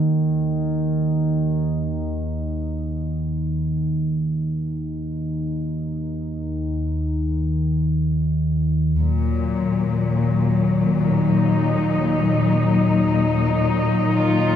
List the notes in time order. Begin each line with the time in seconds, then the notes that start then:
Already playing: D#2 D#3
8.97 D#2 A#2 D#3 F#3
9.24 F#3
11.01 D#4
14.11 F4